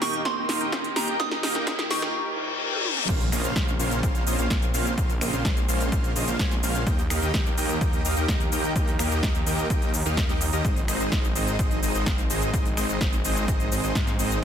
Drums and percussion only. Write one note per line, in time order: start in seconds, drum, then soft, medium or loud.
0.02 snare medium
0.02 open hi-hat loud
0.14 closed hi-hat soft
0.25 kick loud
0.25 snare medium
0.25 closed hi-hat medium
0.49 snare medium
0.49 open hi-hat loud
0.61 closed hi-hat medium
0.72 kick loud
0.72 snare medium
0.72 closed hi-hat medium
0.84 closed hi-hat soft
0.96 snare medium
0.96 open hi-hat loud
1.08 closed hi-hat medium
1.20 kick loud
1.20 snare medium
1.20 closed hi-hat medium
1.31 snare medium
1.43 snare medium
1.43 open hi-hat loud
1.55 snare medium
1.67 kick loud
1.67 snare medium
1.67 closed hi-hat medium
1.79 snare medium
1.79 closed hi-hat soft
1.91 snare loud
1.91 open hi-hat loud
2.02 snare medium
2.02 closed hi-hat soft
2.73 high tom medium
2.85 mid tom medium
2.97 mid tom medium
3.09 kick loud
3.09 closed hi-hat medium
3.09 crash loud
3.09 shaker soft
3.21 closed hi-hat soft
3.21 shaker soft
3.32 finger snap medium
3.32 open hi-hat loud
3.32 shaker medium
3.44 closed hi-hat medium
3.44 shaker soft
3.56 kick loud
3.56 snare loud
3.56 closed hi-hat medium
3.56 shaker soft
3.68 shaker soft
3.80 open hi-hat loud
3.80 shaker medium
3.91 closed hi-hat medium
3.91 shaker soft
4.03 kick loud
4.03 closed hi-hat medium
4.03 shaker soft
4.15 closed hi-hat soft
4.15 shaker soft
4.27 open hi-hat loud
4.27 shaker medium
4.39 closed hi-hat medium
4.39 shaker soft
4.50 kick loud
4.50 snare loud
4.50 closed hi-hat medium
4.50 shaker soft
4.62 closed hi-hat soft
4.62 shaker soft
4.74 open hi-hat loud
4.74 shaker medium
4.86 closed hi-hat medium
4.86 shaker soft
4.98 kick loud
4.98 closed hi-hat medium
4.98 shaker soft
5.10 closed hi-hat soft
5.10 shaker soft
5.21 finger snap medium
5.21 open hi-hat loud
5.21 shaker medium
5.33 closed hi-hat medium
5.33 shaker soft
5.45 kick loud
5.45 snare loud
5.45 closed hi-hat medium
5.45 shaker soft
5.57 closed hi-hat soft
5.57 shaker soft
5.69 open hi-hat loud
5.69 shaker medium
5.80 closed hi-hat medium
5.80 shaker soft
5.92 kick loud
5.92 closed hi-hat medium
5.92 shaker soft
6.04 closed hi-hat soft
6.04 shaker soft
6.16 open hi-hat loud
6.16 shaker medium
6.28 closed hi-hat medium
6.28 shaker soft
6.39 kick loud
6.39 snare loud
6.39 closed hi-hat medium
6.39 shaker soft
6.51 snare soft
6.51 closed hi-hat soft
6.51 shaker soft
6.63 open hi-hat loud
6.63 shaker medium
6.75 closed hi-hat medium
6.75 shaker soft
6.87 kick loud
6.87 closed hi-hat medium
6.87 shaker soft
6.99 closed hi-hat soft
6.99 shaker soft
7.10 finger snap medium
7.10 open hi-hat loud
7.10 shaker medium
7.22 closed hi-hat medium
7.22 shaker soft
7.34 kick loud
7.34 snare loud
7.34 closed hi-hat medium
7.34 shaker soft
7.46 shaker soft
7.58 open hi-hat loud
7.58 shaker medium
7.69 closed hi-hat medium
7.69 shaker soft
7.81 kick loud
7.81 closed hi-hat medium
7.81 shaker soft
7.93 closed hi-hat soft
7.93 shaker soft
8.05 open hi-hat loud
8.05 shaker medium
8.17 closed hi-hat medium
8.17 shaker soft
8.28 kick loud
8.28 snare loud
8.28 closed hi-hat medium
8.28 shaker soft
8.40 closed hi-hat soft
8.40 shaker soft
8.52 open hi-hat loud
8.52 shaker medium
8.64 closed hi-hat medium
8.64 shaker soft
8.76 kick loud
8.76 closed hi-hat medium
8.76 shaker soft
8.88 closed hi-hat soft
8.88 shaker soft
8.99 finger snap medium
8.99 open hi-hat loud
8.99 shaker medium
9.11 closed hi-hat soft
9.11 shaker soft
9.23 kick loud
9.23 snare loud
9.23 closed hi-hat medium
9.23 shaker soft
9.35 closed hi-hat soft
9.35 shaker soft
9.47 open hi-hat loud
9.47 shaker medium
9.58 closed hi-hat soft
9.58 shaker soft
9.70 kick loud
9.70 closed hi-hat medium
9.70 shaker soft
9.82 closed hi-hat soft
9.82 shaker soft
9.94 open hi-hat loud
9.94 shaker medium
10.06 closed hi-hat medium
10.06 shaker soft
10.17 kick loud
10.17 snare loud
10.17 closed hi-hat medium
10.17 shaker soft
10.29 snare soft
10.29 closed hi-hat soft
10.29 shaker soft
10.41 open hi-hat loud
10.41 shaker medium
10.53 closed hi-hat soft
10.53 shaker soft
10.65 kick loud
10.65 closed hi-hat medium
10.65 shaker soft
10.76 closed hi-hat soft
10.76 shaker soft
10.88 finger snap medium
10.88 open hi-hat loud
10.88 shaker medium
11.00 closed hi-hat medium
11.00 shaker soft
11.12 kick loud
11.12 snare loud
11.12 closed hi-hat medium
11.12 shaker soft
11.24 shaker soft
11.36 open hi-hat loud
11.36 shaker medium
11.47 closed hi-hat soft
11.47 shaker soft
11.59 kick loud
11.59 closed hi-hat medium
11.59 shaker soft
11.71 closed hi-hat soft
11.71 shaker soft
11.83 open hi-hat loud
11.83 shaker medium
11.95 closed hi-hat soft
11.95 shaker soft
12.06 kick loud
12.06 snare loud
12.06 closed hi-hat medium
12.06 shaker soft
12.18 closed hi-hat soft
12.18 shaker soft
12.30 open hi-hat loud
12.30 shaker medium
12.42 closed hi-hat soft
12.42 shaker soft
12.54 kick loud
12.54 closed hi-hat medium
12.54 shaker soft
12.65 closed hi-hat soft
12.65 shaker soft
12.77 finger snap medium
12.77 open hi-hat loud
12.77 shaker medium
12.89 closed hi-hat medium
12.89 shaker soft
13.01 kick loud
13.01 snare loud
13.01 closed hi-hat medium
13.01 shaker soft
13.13 closed hi-hat soft
13.13 shaker soft
13.24 open hi-hat loud
13.24 shaker medium
13.36 closed hi-hat medium
13.36 shaker soft
13.48 kick loud
13.48 closed hi-hat medium
13.48 shaker soft
13.60 closed hi-hat soft
13.60 shaker soft
13.72 open hi-hat loud
13.72 shaker medium
13.84 closed hi-hat medium
13.84 shaker soft
13.95 kick loud
13.95 snare loud
13.95 closed hi-hat medium
13.95 shaker soft
14.07 snare soft
14.07 closed hi-hat soft
14.07 shaker soft
14.19 open hi-hat loud
14.19 shaker medium
14.31 closed hi-hat medium
14.31 shaker soft